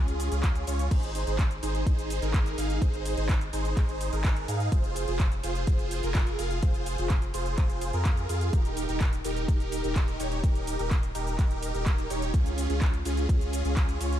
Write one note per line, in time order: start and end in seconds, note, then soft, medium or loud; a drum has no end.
0.00 0.29 C#2 medium
0.00 0.29 C#4 medium
0.00 0.29 F4 medium
0.00 0.29 G#4 loud
0.08 closed hi-hat soft
0.08 cabasa soft
0.20 open hi-hat loud
0.20 ride medium
0.20 cabasa medium
0.32 0.65 C#2 loud
0.32 0.65 C#4 medium
0.32 0.65 F4 medium
0.32 0.65 G#4 medium
0.32 closed hi-hat medium
0.32 cabasa soft
0.43 kick loud
0.43 clap loud
0.43 closed hi-hat medium
0.43 cabasa soft
0.55 closed hi-hat soft
0.55 cabasa soft
0.67 0.89 C#2 loud
0.67 0.88 C#4 medium
0.67 0.88 F4 medium
0.67 0.88 C#5 loud
0.67 open hi-hat medium
0.67 ride medium
0.67 cabasa medium
0.79 closed hi-hat medium
0.79 cabasa soft
0.91 1.25 G#1 loud
0.91 1.24 D#4 medium
0.91 1.24 G#4 medium
0.91 1.24 C5 loud
0.91 kick loud
0.91 closed hi-hat medium
0.91 crash loud
0.91 ride medium
0.91 cabasa soft
1.03 closed hi-hat soft
1.03 cabasa soft
1.15 open hi-hat loud
1.15 ride medium
1.15 cabasa medium
1.27 1.60 G#1 loud
1.27 1.40 D#4 loud
1.27 1.40 G#4 medium
1.27 1.40 C5 loud
1.27 closed hi-hat soft
1.27 cabasa soft
1.39 kick loud
1.39 clap loud
1.39 closed hi-hat medium
1.39 ride medium
1.39 cabasa soft
1.51 closed hi-hat soft
1.51 cabasa soft
1.63 1.84 G#1 loud
1.63 1.84 D#4 medium
1.63 1.84 G#4 medium
1.63 1.84 C5 medium
1.63 open hi-hat loud
1.63 ride medium
1.63 cabasa medium
1.75 closed hi-hat soft
1.75 cabasa soft
1.86 2.20 G#1 medium
1.86 kick loud
1.86 closed hi-hat medium
1.86 ride medium
1.86 cabasa soft
1.99 closed hi-hat soft
1.99 cabasa soft
2.10 open hi-hat loud
2.10 ride medium
2.10 cabasa medium
2.22 2.55 G#1 loud
2.22 2.55 D#4 medium
2.22 2.55 G#4 medium
2.22 2.55 A#4 loud
2.22 closed hi-hat soft
2.22 cabasa soft
2.34 kick loud
2.34 clap loud
2.34 closed hi-hat medium
2.34 ride medium
2.34 cabasa soft
2.46 closed hi-hat soft
2.46 cabasa soft
2.58 2.79 G#1 loud
2.58 2.78 D#4 medium
2.58 2.78 G#4 medium
2.58 2.78 F5 loud
2.58 open hi-hat loud
2.58 ride medium
2.58 cabasa medium
2.70 closed hi-hat soft
2.70 cabasa soft
2.82 3.15 G#1 loud
2.82 3.15 D#4 medium
2.82 kick loud
2.82 closed hi-hat medium
2.82 ride medium
2.82 cabasa soft
2.94 closed hi-hat soft
2.94 cabasa soft
3.05 open hi-hat loud
3.05 ride medium
3.05 cabasa medium
3.17 3.51 G#1 loud
3.17 3.31 D#4 loud
3.17 3.31 G#4 medium
3.17 3.31 C5 loud
3.17 closed hi-hat soft
3.17 cabasa soft
3.29 kick loud
3.29 clap loud
3.29 closed hi-hat medium
3.29 ride medium
3.29 cabasa soft
3.41 closed hi-hat soft
3.41 cabasa soft
3.53 3.75 G#1 loud
3.53 3.74 D#4 medium
3.53 3.74 G#4 medium
3.53 3.74 C5 medium
3.53 open hi-hat loud
3.53 ride medium
3.53 cabasa medium
3.65 closed hi-hat soft
3.65 cabasa soft
3.77 4.10 G#1 loud
3.77 4.10 D#4 medium
3.77 4.10 G#4 medium
3.77 kick loud
3.77 clap medium
3.77 closed hi-hat medium
3.77 ride medium
3.77 cabasa soft
3.89 closed hi-hat soft
3.89 cabasa soft
4.01 open hi-hat loud
4.01 ride medium
4.01 cabasa medium
4.13 4.46 G#1 medium
4.13 4.46 D#4 medium
4.13 4.45 G#4 medium
4.13 4.45 A#4 medium
4.13 closed hi-hat soft
4.13 cabasa soft
4.25 kick loud
4.25 clap loud
4.25 closed hi-hat medium
4.25 ride medium
4.25 cabasa soft
4.36 closed hi-hat soft
4.36 cabasa soft
4.48 4.70 G#2 loud
4.48 4.68 D#4 loud
4.48 4.69 G#4 medium
4.48 4.69 F5 loud
4.48 open hi-hat loud
4.48 ride medium
4.48 cabasa medium
4.60 closed hi-hat soft
4.60 cabasa soft
4.72 5.05 F1 loud
4.72 5.05 C5 loud
4.72 kick loud
4.72 closed hi-hat medium
4.72 ride medium
4.72 cabasa soft
4.84 closed hi-hat soft
4.84 cabasa soft
4.96 open hi-hat loud
4.96 ride medium
4.96 cabasa medium
5.08 5.41 F1 medium
5.08 5.21 F4 loud
5.08 5.21 G#4 medium
5.08 5.21 C5 loud
5.08 closed hi-hat soft
5.08 cabasa soft
5.20 kick loud
5.20 clap loud
5.20 closed hi-hat medium
5.20 ride medium
5.20 cabasa soft
5.32 closed hi-hat soft
5.32 cabasa soft
5.43 5.65 F1 loud
5.43 5.65 F4 medium
5.43 5.65 G#4 medium
5.43 5.64 C5 medium
5.43 open hi-hat loud
5.43 ride medium
5.43 cabasa medium
5.55 closed hi-hat soft
5.55 cabasa soft
5.67 6.01 F1 loud
5.67 6.00 F4 medium
5.67 6.00 G#4 medium
5.67 kick loud
5.67 closed hi-hat medium
5.67 ride medium
5.67 cabasa soft
5.79 closed hi-hat soft
5.79 cabasa soft
5.91 open hi-hat loud
5.91 ride medium
5.91 cabasa medium
6.03 6.37 F1 medium
6.03 6.36 F4 medium
6.03 6.36 G#4 medium
6.03 6.36 A#4 loud
6.03 closed hi-hat soft
6.03 cabasa soft
6.15 kick loud
6.15 clap loud
6.15 closed hi-hat medium
6.15 ride medium
6.15 cabasa soft
6.27 closed hi-hat soft
6.27 cabasa soft
6.39 6.60 F1 loud
6.39 6.59 F4 medium
6.39 6.59 G#4 medium
6.39 6.59 F5 loud
6.39 open hi-hat loud
6.39 ride medium
6.39 cabasa medium
6.51 closed hi-hat soft
6.51 cabasa soft
6.63 6.96 F1 loud
6.63 6.95 G#4 medium
6.63 6.95 C5 loud
6.63 kick loud
6.63 closed hi-hat medium
6.63 ride medium
6.63 cabasa soft
6.74 closed hi-hat soft
6.74 cabasa soft
6.86 open hi-hat loud
6.86 ride medium
6.86 cabasa medium
6.98 7.32 F1 loud
6.98 7.12 F4 loud
6.98 7.12 G#4 medium
6.98 7.12 C5 loud
6.98 closed hi-hat soft
6.98 cabasa soft
7.10 kick loud
7.10 clap loud
7.10 closed hi-hat medium
7.10 ride medium
7.10 cabasa soft
7.22 closed hi-hat soft
7.22 cabasa soft
7.34 7.55 F1 loud
7.34 7.55 F4 medium
7.34 7.55 G#4 medium
7.34 7.55 C5 medium
7.34 open hi-hat loud
7.34 ride medium
7.34 cabasa medium
7.46 closed hi-hat soft
7.46 cabasa soft
7.58 7.91 F1 medium
7.58 7.91 F4 medium
7.58 7.91 G#4 medium
7.58 7.91 C5 loud
7.58 kick loud
7.58 clap medium
7.58 closed hi-hat medium
7.58 ride medium
7.58 cabasa soft
7.70 closed hi-hat soft
7.70 cabasa soft
7.81 open hi-hat loud
7.81 ride medium
7.81 cabasa medium
7.93 8.27 F2 loud
7.93 8.26 F4 medium
7.93 8.26 G#4 medium
7.93 8.26 A#4 loud
7.93 closed hi-hat soft
7.93 cabasa soft
8.05 kick loud
8.05 clap loud
8.05 closed hi-hat medium
8.05 ride medium
8.05 cabasa soft
8.17 closed hi-hat soft
8.17 cabasa soft
8.29 8.51 F2 loud
8.29 8.50 F4 medium
8.29 8.50 G#4 medium
8.29 8.50 F5 loud
8.29 open hi-hat loud
8.29 ride medium
8.29 cabasa medium
8.41 closed hi-hat soft
8.41 cabasa soft
8.53 8.86 D#1 medium
8.53 8.86 D#4 medium
8.53 8.86 G4 medium
8.53 8.86 A#4 loud
8.53 kick loud
8.53 closed hi-hat medium
8.53 ride medium
8.53 cabasa soft
8.65 closed hi-hat soft
8.65 cabasa soft
8.77 open hi-hat loud
8.77 ride medium
8.77 cabasa medium
8.89 9.22 D#1 medium
8.89 9.02 D#4 loud
8.89 9.02 G4 loud
8.89 9.02 A#4 loud
8.89 closed hi-hat soft
8.89 cabasa soft
9.01 kick loud
9.01 clap loud
9.01 closed hi-hat medium
9.01 ride medium
9.01 cabasa soft
9.13 closed hi-hat soft
9.13 cabasa soft
9.25 9.46 D#1 loud
9.25 9.46 D#4 medium
9.25 9.46 G4 medium
9.25 9.46 A#4 medium
9.25 open hi-hat loud
9.25 ride medium
9.25 cabasa medium
9.37 closed hi-hat soft
9.37 cabasa soft
9.48 9.82 D#1 medium
9.48 9.81 D#4 medium
9.48 9.81 G4 medium
9.48 9.81 A#4 loud
9.48 kick loud
9.48 closed hi-hat medium
9.48 ride medium
9.48 cabasa soft
9.60 closed hi-hat soft
9.60 cabasa soft
9.72 open hi-hat loud
9.72 ride medium
9.72 cabasa medium
9.84 10.17 D#1 loud
9.84 10.17 D#4 medium
9.84 10.17 G4 medium
9.84 10.17 A#4 loud
9.84 closed hi-hat soft
9.84 cabasa soft
9.96 kick loud
9.96 clap loud
9.96 closed hi-hat medium
9.96 ride medium
9.96 cabasa soft
10.08 closed hi-hat soft
10.08 cabasa soft
10.20 10.41 D#1 loud
10.20 10.40 D#4 medium
10.20 10.40 G4 medium
10.20 10.40 C#5 loud
10.20 open hi-hat loud
10.20 ride medium
10.20 cabasa medium
10.32 closed hi-hat soft
10.32 cabasa soft
10.44 10.77 D#1 loud
10.44 10.76 G4 medium
10.44 kick loud
10.44 closed hi-hat medium
10.44 ride medium
10.44 cabasa soft
10.55 closed hi-hat soft
10.55 cabasa soft
10.67 open hi-hat loud
10.67 ride medium
10.67 cabasa medium
10.79 11.13 D#1 loud
10.79 10.93 D#4 loud
10.79 10.93 G4 medium
10.79 10.93 A#4 loud
10.79 closed hi-hat soft
10.79 cabasa soft
10.91 kick loud
10.91 clap loud
10.91 closed hi-hat medium
10.91 ride medium
10.91 cabasa soft
11.03 closed hi-hat soft
11.03 cabasa soft
11.15 11.36 D#1 loud
11.15 11.36 D#4 medium
11.15 11.36 G4 medium
11.15 11.36 A#4 medium
11.15 open hi-hat loud
11.15 ride medium
11.15 cabasa medium
11.27 closed hi-hat soft
11.27 cabasa soft
11.39 11.72 D#1 medium
11.39 kick loud
11.39 clap medium
11.39 closed hi-hat medium
11.39 ride medium
11.39 cabasa soft
11.51 closed hi-hat soft
11.51 cabasa soft
11.63 open hi-hat loud
11.63 ride medium
11.63 cabasa medium
11.74 12.08 D#1 medium
11.74 12.07 D#4 medium
11.74 12.07 G4 medium
11.74 12.07 A#4 loud
11.74 closed hi-hat soft
11.74 cabasa soft
11.86 kick loud
11.86 clap loud
11.86 closed hi-hat medium
11.86 ride medium
11.86 cabasa soft
11.98 closed hi-hat soft
11.98 cabasa soft
12.10 12.32 D#1 loud
12.10 12.30 D#4 medium
12.10 12.30 G4 medium
12.10 12.30 C#5 loud
12.10 open hi-hat loud
12.10 ride medium
12.10 cabasa medium
12.22 closed hi-hat soft
12.22 cabasa soft
12.34 12.67 C#2 loud
12.34 kick loud
12.34 closed hi-hat medium
12.34 ride medium
12.34 cabasa soft
12.46 closed hi-hat soft
12.46 cabasa soft
12.58 open hi-hat loud
12.58 ride medium
12.58 cabasa medium
12.70 13.03 C#2 loud
12.70 12.83 C#4 loud
12.70 12.83 F4 medium
12.70 12.83 G#4 loud
12.70 closed hi-hat soft
12.70 cabasa soft
12.82 kick loud
12.82 clap loud
12.82 closed hi-hat medium
12.82 ride medium
12.82 cabasa soft
12.94 closed hi-hat soft
12.94 cabasa soft
13.05 13.27 C#2 loud
13.05 13.26 C#4 medium
13.05 13.26 F4 medium
13.05 13.26 G#4 medium
13.05 open hi-hat loud
13.05 ride medium
13.05 cabasa medium
13.17 closed hi-hat soft
13.17 cabasa soft
13.29 13.63 C#2 medium
13.29 13.62 C#4 medium
13.29 13.62 G#4 loud
13.29 kick loud
13.29 closed hi-hat medium
13.29 ride medium
13.29 cabasa soft
13.41 closed hi-hat soft
13.41 cabasa soft
13.53 open hi-hat loud
13.53 ride medium
13.53 cabasa medium
13.65 13.98 C#2 loud
13.65 13.98 C#4 medium
13.65 13.98 F4 medium
13.65 13.98 G#4 medium
13.65 closed hi-hat soft
13.65 cabasa soft
13.77 kick loud
13.77 clap loud
13.77 closed hi-hat medium
13.77 ride medium
13.77 cabasa soft
13.89 closed hi-hat soft
13.89 cabasa soft
14.01 14.20 C#2 loud
14.01 14.20 C#4 medium
14.01 14.20 F4 medium
14.01 14.20 C#5 loud
14.01 open hi-hat loud
14.01 ride medium
14.01 cabasa medium
14.12 closed hi-hat soft
14.12 cabasa soft